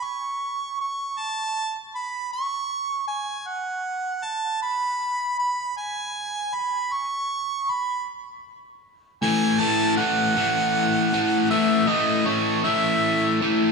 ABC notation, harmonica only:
X:1
M:6/8
L:1/8
Q:3/8=52
K:Alyd
V:1 name="Harmonica"
c'2 c' a2 b | c'2 g f2 a | b2 b g2 b | c'2 b z3 |
g a f4 | e d c e2 z |]